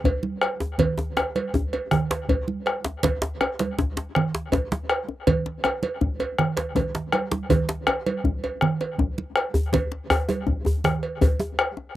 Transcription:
0.04 bombo low medium
0.04 cowbell medium
0.04 djembe tone medium
0.04 djembe bass medium
0.23 djembe slap soft
0.23 high conga medium
0.42 bombo rim medium
0.42 cowbell soft
0.60 djembe slap soft
0.60 djembe tone medium
0.78 bombo low medium
0.78 cowbell medium
0.78 low conga medium
0.78 djembe bass medium
0.98 djembe slap medium
0.98 djembe tone medium
1.17 bombo rim medium
1.17 cowbell soft
1.17 djembe slap medium
1.17 djembe tone medium
1.36 cowbell medium
1.36 high conga medium
1.54 bombo low medium
1.54 djembe tone medium
1.54 high conga soft
1.54 djembe bass medium
1.73 cowbell soft
1.73 djembe slap soft
1.73 djembe tone medium
1.91 bombo rim medium
1.91 djembe tone medium
1.91 low conga medium
2.11 cowbell soft
2.11 djembe slap soft
2.11 djembe slap medium
2.29 bombo low medium
2.29 cowbell soft
2.29 djembe tone medium
2.29 djembe bass medium
2.48 djembe slap soft
2.48 high conga medium
2.66 bombo rim medium
2.66 cowbell soft
2.85 djembe slap medium
2.85 djembe slap soft
2.85 djembe tone medium
3.03 bombo low medium
3.03 cowbell medium
3.03 djembe slap medium
3.03 low conga medium
3.03 djembe bass medium
3.22 djembe slap medium
3.41 bombo rim medium
3.41 cowbell soft
3.41 djembe tone medium
3.59 cowbell soft
3.59 djembe slap medium
3.59 high conga medium
3.78 bombo low medium
3.78 djembe slap medium
3.78 djembe bass medium
3.97 djembe slap soft
3.97 djembe slap medium
3.97 djembe tone medium
4.15 bombo rim medium
4.15 low conga medium
4.35 djembe slap medium
4.52 bombo low medium
4.52 cowbell soft
4.52 djembe slap medium
4.52 djembe tone medium
4.52 djembe bass medium
4.71 djembe slap soft
4.71 djembe slap medium
4.71 high conga medium
4.90 bombo rim medium
4.90 cowbell soft
5.09 djembe slap soft
5.09 djembe tone medium
5.27 bombo rim soft
5.27 bombo low medium
5.27 cowbell medium
5.27 high conga soft
5.27 djembe bass medium
5.27 low conga medium
5.46 djembe slap medium
5.64 bombo rim medium
5.64 cowbell medium
5.64 djembe tone medium
5.83 cowbell soft
5.83 high conga medium
6.01 bombo low medium
6.01 high conga soft
6.01 djembe bass medium
6.20 cowbell medium
6.20 djembe tone medium
6.20 high conga soft
6.39 bombo rim medium
6.39 djembe slap soft
6.39 high conga soft
6.39 low conga medium
6.57 cowbell soft
6.57 djembe slap medium
6.57 djembe slap soft
6.57 high conga soft
6.75 bombo low medium
6.75 cowbell soft
6.75 djembe tone medium
6.75 low conga soft
6.75 djembe bass medium
6.95 djembe slap medium
6.95 low conga soft
7.12 bombo rim medium
7.12 cowbell soft
7.12 high conga medium
7.31 djembe slap medium
7.31 djembe tone soft
7.31 high conga medium
7.49 bombo low medium
7.49 cowbell medium
7.49 djembe tone medium
7.49 djembe bass medium
7.49 low conga medium
7.69 djembe slap medium
7.87 bombo rim loud
7.87 cowbell soft
7.87 djembe tone medium
8.06 cowbell soft
8.06 high conga medium
8.24 bombo low medium
8.24 high conga soft
8.24 djembe bass medium
8.44 cowbell soft
8.44 djembe tone medium
8.61 bombo rim medium
8.61 low conga medium
8.81 cowbell soft
8.81 djembe slap soft
8.98 bombo low medium
8.98 djembe tone medium
8.98 djembe bass medium
9.18 djembe slap soft
9.18 high conga medium
9.36 bombo rim medium
9.36 cowbell soft
9.54 djembe slap soft
9.54 djembe tone medium
9.54 djembe bass medium
9.72 bombo low medium
9.72 cowbell medium
9.72 djembe tone medium
9.72 djembe bass medium
9.72 low conga medium
9.92 djembe slap medium
10.10 bombo rim medium
10.10 cowbell soft
10.10 djembe tone medium
10.10 djembe bass medium
10.29 cowbell soft
10.29 djembe tone medium
10.29 high conga medium
10.47 bombo low medium
10.47 high conga soft
10.47 djembe bass medium
10.65 djembe slap soft
10.65 djembe tone medium
10.65 djembe bass medium
10.84 bombo rim medium
10.84 djembe tone medium
10.84 low conga medium
11.03 cowbell soft
11.21 bombo low medium
11.21 cowbell soft
11.21 djembe tone medium
11.21 djembe bass medium
11.40 djembe slap soft
11.40 high conga medium
11.40 djembe tone medium
11.59 bombo rim loud
11.59 cowbell soft
11.77 djembe slap soft
11.77 djembe tone medium

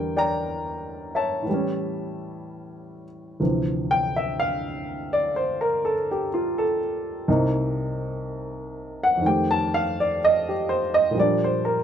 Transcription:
0.00 1.47 E2 soft
0.00 1.47 D3 soft
0.00 1.47 G3 soft
0.00 1.48 A#3 soft
0.00 1.44 A#4 medium
0.00 0.15 D5 medium
0.00 0.14 G5 medium
0.17 1.42 D5 medium
0.17 1.43 G5 medium
0.17 1.17 A#5 medium
1.15 3.04 C#5 medium
1.15 3.04 E5 medium
1.15 3.04 A5 medium
1.43 3.38 A2 medium
1.43 3.40 E3 soft
1.50 3.42 G3 soft
1.54 3.44 C#4 medium
3.40 7.27 D2 soft
3.40 7.27 C3 soft
3.40 7.28 E3 medium
3.40 7.28 F3 soft
3.91 4.13 G5 medium
4.16 4.34 E5 medium
4.40 5.14 F5 medium
5.13 5.31 D5 medium
5.36 5.66 C5 medium
5.61 5.94 A#4 medium
5.85 6.07 A4 medium
6.11 6.29 G4 medium
6.34 6.63 F4 medium
6.58 6.79 A4 medium
7.28 9.22 C2 medium
7.28 9.22 C3 medium
7.28 9.22 A#3 medium
7.28 9.22 D#4 medium
9.03 9.20 F#5 medium
9.17 11.13 F2 medium
9.17 11.15 D#3 soft
9.25 11.17 A3 soft
9.25 10.47 G4 medium
9.25 9.55 G5 medium
9.51 9.83 A5 medium
9.74 9.96 F5 medium
10.00 10.17 D5 medium
10.25 10.52 D#5 medium
10.49 10.80 G4 medium
10.69 10.91 C5 medium
10.94 11.12 D#5 medium
11.11 11.84 A#2 medium
11.11 11.84 F3 soft
11.18 11.84 G3 soft
11.18 11.84 D4 medium
11.18 11.48 D5 medium
11.44 11.76 C5 medium
11.65 11.84 A#4 medium

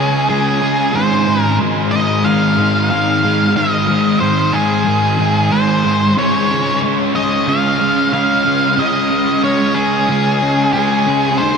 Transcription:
0.00 0.28 C#3 medium
0.00 0.31 G#3 medium
0.00 0.30 C#4 medium
0.00 0.28 G#4 medium
0.30 0.93 C#3 medium
0.30 0.63 G#3 medium
0.30 0.60 C#4 medium
0.30 0.96 G#4 medium
0.61 0.95 G#3 medium
0.61 0.92 C#4 medium
0.93 1.60 G#2 medium
0.93 1.27 D#3 medium
0.93 1.26 G#3 loud
0.93 1.41 C5 medium
1.27 1.60 D#3 medium
1.27 1.61 G#3 medium
1.41 1.56 A#4 medium
1.60 2.24 G#2 medium
1.60 1.93 D#3 medium
1.60 1.92 G#3 medium
1.91 2.24 D#3 medium
1.91 2.26 G#3 medium
1.91 2.25 D#5 loud
2.25 2.89 G#2 loud
2.25 2.58 D#3 loud
2.25 2.57 G#3 medium
2.25 2.89 F5 loud
2.57 2.91 D#3 medium
2.57 2.92 G#3 medium
2.90 3.54 G#2 medium
2.90 3.25 D#3 medium
2.90 3.24 G#3 medium
2.90 3.51 F5 loud
3.24 3.56 D#3 medium
3.24 3.58 G#3 medium
3.55 4.19 G#2 medium
3.55 3.89 D#3 loud
3.55 3.88 G#3 medium
3.55 4.20 D#5 loud
3.88 4.20 D#3 medium
3.88 4.23 G#3 medium
4.20 4.84 G#2 medium
4.20 4.53 D#3 medium
4.20 4.52 G#3 medium
4.20 4.54 C5 medium
4.52 4.86 D#3 medium
4.52 4.87 G#3 medium
4.52 5.54 G#4 medium
4.85 5.50 G#2 medium
4.85 5.19 D#3 loud
4.85 5.18 G#3 loud
5.18 5.51 D#3 medium
5.18 5.53 G#3 medium
5.51 6.15 G#2 medium
5.51 5.85 D#3 medium
5.51 5.84 G#3 medium
5.51 6.13 C5 medium
5.84 6.16 D#3 medium
5.84 6.17 G#3 medium
6.17 6.82 C#3 medium
6.17 6.51 G#3 loud
6.17 6.49 C#4 loud
6.17 6.79 C#5 medium
6.49 6.83 G#3 medium
6.49 6.84 C#4 medium
6.82 7.46 C#3 medium
6.82 7.16 G#3 medium
6.82 7.14 C#4 medium
7.15 7.47 G#3 medium
7.15 7.47 C#4 medium
7.15 7.49 D#5 loud
7.47 8.11 C#3 loud
7.47 7.80 G#3 medium
7.47 7.78 C#4 medium
7.47 8.12 F5 loud
7.79 8.12 G#3 medium
7.79 8.13 C#4 medium
8.12 8.76 C#3 medium
8.12 8.46 G#3 medium
8.12 8.43 C#4 medium
8.12 8.80 F5 medium
8.45 8.77 G#3 medium
8.45 8.78 C#4 medium
8.77 9.42 C#3 medium
8.77 9.10 G#3 medium
8.77 9.09 C#4 loud
8.77 9.43 D#5 loud
9.10 9.43 G#3 medium
9.10 9.44 C#4 medium
9.43 10.07 C#3 medium
9.43 9.75 G#3 medium
9.43 9.74 C#4 medium
9.43 9.77 C#5 medium
9.75 10.08 G#3 medium
9.75 10.09 C#4 medium
9.75 10.72 G#4 medium
10.08 10.73 C#3 loud
10.08 10.42 G#3 loud
10.08 10.41 C#4 loud
10.42 10.74 G#3 medium
10.42 10.75 C#4 medium
10.73 11.37 C#3 medium
10.73 11.08 G#3 medium
10.73 11.06 C#4 medium
10.73 11.40 G#4 medium
11.07 11.38 G#3 medium
11.07 11.37 C#4 medium
11.38 11.58 D#3 medium
11.38 11.58 A#3 medium
11.38 11.58 C5 loud
11.42 11.58 D#4 loud

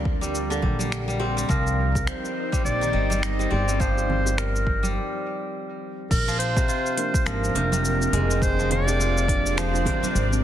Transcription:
0.00 0.60 D2 medium
0.00 0.49 D3 medium
0.00 0.54 F3 medium
0.00 0.20 G3 medium
0.00 4.92 G3 medium
0.00 1.46 A#3 medium
0.00 1.19 C4 medium
0.00 1.46 D4 medium
0.00 4.92 A#4 medium
0.00 1.46 D5 medium
0.05 kick medium
0.05 high conga soft
0.21 0.54 G3 medium
0.21 shaker medium
0.35 shaker medium
0.50 1.55 D3 medium
0.50 high bongo soft
0.50 shaker soft
0.62 1.46 A#1 medium
0.62 0.78 G3 medium
0.62 kick medium
0.62 high conga medium
0.62 low conga medium
0.79 1.07 G3 medium
0.79 high conga medium
0.79 shaker medium
0.92 finger snap loud
0.92 shaker medium
1.07 1.36 G3 medium
1.07 high conga soft
1.07 shaker soft
1.20 3.50 C4 medium
1.20 high bongo medium
1.37 1.55 G3 medium
1.37 shaker medium
1.49 2.04 C2 loud
1.49 2.84 F3 medium
1.49 4.93 C4 medium
1.49 4.93 D#4 medium
1.49 2.09 A#4 medium
1.49 4.93 C5 medium
1.49 kick loud
1.49 shaker medium
1.67 shaker soft
1.95 kick loud
1.95 high bongo medium
1.95 shaker medium
2.07 2.64 C5 medium
2.07 finger snap loud
2.07 shaker soft
2.25 shaker soft
2.52 2.84 G3 medium
2.52 kick medium
2.52 shaker medium
2.65 2.90 A#1 medium
2.65 3.24 D5 loud
2.65 shaker medium
2.81 6.16 D#3 medium
2.81 shaker soft
2.93 3.48 G1 medium
2.93 3.09 G3 medium
3.10 3.38 G3 medium
3.10 high conga medium
3.10 shaker medium
3.22 3.53 D#5 loud
3.22 finger snap loud
3.22 shaker medium
3.39 3.67 G3 medium
3.39 shaker soft
3.50 4.96 G1 medium
3.50 6.50 C4 medium
3.50 3.82 D5 loud
3.50 high bongo medium
3.50 high conga soft
3.68 4.82 G3 medium
3.68 shaker medium
3.80 6.16 F3 medium
3.80 4.39 C5 loud
3.80 kick loud
3.80 shaker medium
3.98 high bongo soft
3.98 shaker soft
4.10 low conga medium
4.26 high bongo medium
4.26 shaker medium
4.38 4.96 A#4 medium
4.38 finger snap loud
4.38 shaker medium
4.56 shaker soft
4.67 kick medium
4.67 high conga soft
4.83 6.16 G3 medium
4.83 high conga medium
4.83 shaker medium
6.10 6.66 A#1 loud
6.10 10.44 F3 medium
6.10 10.44 C4 medium
6.10 10.44 D4 medium
6.10 6.38 A#4 medium
6.10 10.44 A#4 medium
6.10 8.40 C5 medium
6.10 kick loud
6.10 crash loud
6.10 shaker medium
6.28 6.59 F3 medium
6.28 shaker soft
6.39 7.28 C5 loud
6.39 open hi-hat medium
6.57 7.54 C3 medium
6.57 kick loud
6.57 high bongo medium
6.57 shaker medium
6.68 9.00 F4 medium
6.68 shaker medium
6.86 shaker soft
6.97 7.52 F3 medium
6.97 7.52 A#3 medium
6.97 7.53 C4 medium
6.97 7.53 D4 medium
6.97 7.53 A#4 medium
6.97 open hi-hat loud
7.14 kick loud
7.14 shaker medium
7.26 7.51 G#1 medium
7.26 7.60 F3 medium
7.26 8.44 A#4 loud
7.26 finger snap medium
7.26 shaker medium
7.44 shaker soft
7.54 8.09 F1 medium
7.54 7.71 C3 medium
7.54 7.97 F3 medium
7.54 7.97 A#3 medium
7.54 7.97 C4 medium
7.54 7.97 D4 medium
7.54 7.98 A#4 loud
7.54 open hi-hat medium
7.72 8.87 C3 medium
7.72 high conga medium
7.72 shaker medium
7.85 shaker medium
7.99 9.25 F3 medium
7.99 9.25 A#3 medium
7.99 9.26 C4 medium
7.99 9.26 D4 medium
7.99 shaker soft
8.03 9.27 A#4 loud
8.13 9.83 F1 medium
8.13 10.42 G#3 loud
8.13 open hi-hat medium
8.13 high bongo medium
8.13 high conga soft
8.30 10.44 C4 medium
8.30 shaker medium
8.41 8.71 C5 loud
8.41 10.44 D5 medium
8.41 kick loud
8.41 shaker medium
8.59 8.90 F3 medium
8.59 high bongo soft
8.59 shaker soft
8.70 9.60 D5 loud
8.70 open hi-hat medium
8.70 low conga medium
8.87 9.85 C3 medium
8.87 high bongo medium
8.87 shaker medium
9.00 10.44 F4 medium
9.00 shaker medium
9.18 shaker soft
9.28 9.70 F3 medium
9.28 9.70 A#3 medium
9.28 9.70 C4 medium
9.28 9.70 D4 medium
9.28 9.71 G#4 medium
9.28 kick loud
9.28 open hi-hat medium
9.28 high conga soft
9.46 shaker medium
9.57 9.91 F3 loud
9.57 10.44 C5 loud
9.57 finger snap medium
9.57 shaker medium
9.73 9.86 F3 medium
9.73 9.86 A#3 medium
9.73 9.87 C4 medium
9.73 9.87 D4 medium
9.73 9.87 C5 medium
9.73 high bongo medium
9.73 shaker soft
9.85 10.01 C3 medium
9.85 kick medium
9.85 open hi-hat medium
9.85 high conga medium
9.85 low conga loud
10.03 10.44 C3 medium
10.03 high conga medium
10.03 shaker medium
10.15 10.44 G#1 loud
10.15 shaker medium
10.31 10.44 F3 medium
10.31 10.44 A#3 medium
10.31 10.44 C4 medium
10.31 10.44 D4 medium
10.31 10.44 A#4 medium
10.31 high conga soft
10.31 shaker soft

